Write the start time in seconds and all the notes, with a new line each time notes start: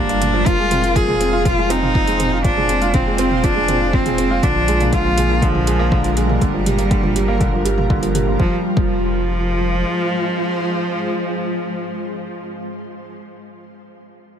Already playing: G1 D3 F3 G3 A#3 D4 F4 A#4
0.09 A#3, closed hi-hat
0.22 A#3, closed hi-hat, mid tom
0.34 F3
0.46 F1 F3 G#3 F4 C5, kick, closed hi-hat
0.59 G#3
0.71 C4, closed hi-hat, mid tom
0.84 F4, closed hi-hat
0.95 F3 G#4, kick, closed hi-hat
1.08 G#3, mid tom
1.20 C4, closed hi-hat
1.33 F4
1.45 F3 F4, kick, closed hi-hat, mid tom
1.58 G#3
1.70 C4 D#4, closed hi-hat
1.82 F4, mid tom
1.95 F3, kick
2.07 G#3, closed hi-hat
2.20 C4, closed hi-hat, mid tom
2.32 F4
2.44 F3 D4 F4, kick, closed hi-hat
2.57 G#3, mid tom
2.69 C4, closed hi-hat
2.82 F4, closed hi-hat
2.94 F3 C4, kick, closed hi-hat, mid tom
3.07 G#3
3.18 C4, closed hi-hat
3.31 F4, mid tom
3.44 F3 D4, kick, closed hi-hat
3.56 G#3
3.68 C4, closed hi-hat, mid tom
3.81 F4
3.93 F3 C4, kick
4.06 G#3, closed hi-hat, mid tom
4.18 C4, closed hi-hat
4.30 F4
4.43 A#1 D3 D4 A#4, kick, closed hi-hat, mid tom
4.56 F3
4.68 G#3, closed hi-hat
4.80 A#3, closed hi-hat, mid tom
4.93 D3 F4, kick, closed hi-hat
5.05 F3
5.18 G#3, closed hi-hat, mid tom
5.30 A#3
5.42 D3 F3, kick, closed hi-hat
5.55 F3, mid tom
5.67 G#3, closed hi-hat
5.79 A#3
5.92 D3, kick, mid tom
6.04 F3, closed hi-hat
6.17 G3 G#3, closed hi-hat
6.29 A#3, mid tom
6.41 G1 D3 G3 F4, kick, closed hi-hat
6.54 F3
6.66 G3, closed hi-hat, mid tom
6.78 A#3, closed hi-hat
6.91 D3, kick, closed hi-hat
7.03 F3, mid tom
7.16 G3, closed hi-hat
7.28 A#3
7.40 D3, kick, closed hi-hat, mid tom
7.53 F3
7.65 G3, closed hi-hat
7.78 A#3, mid tom
7.90 D3, kick
8.02 F3, closed hi-hat
8.15 G3, closed hi-hat, mid tom
8.27 A#3
8.40 F1 F3 G#3 F4 C5, kick
8.77 F1 F3, kick